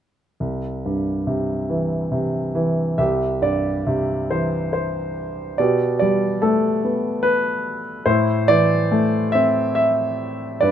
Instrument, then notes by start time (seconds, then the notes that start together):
grand piano
0.40 C2
0.86 G2
1.27 C3
1.69 E3
2.12 C3
2.55 E3
2.98 C2 G4 E5
3.42 G2 D5
3.87 C3
4.30 E3 C5
4.73 C5
5.58 B2 G4 D5
5.99 G3 D5
6.42 A3 A4
6.84 B3
7.23 B4
8.06 A2 E4 C5
8.48 E3 D5
8.92 A3
9.32 C4 E5
9.75 E5
10.61 G2 B4 D5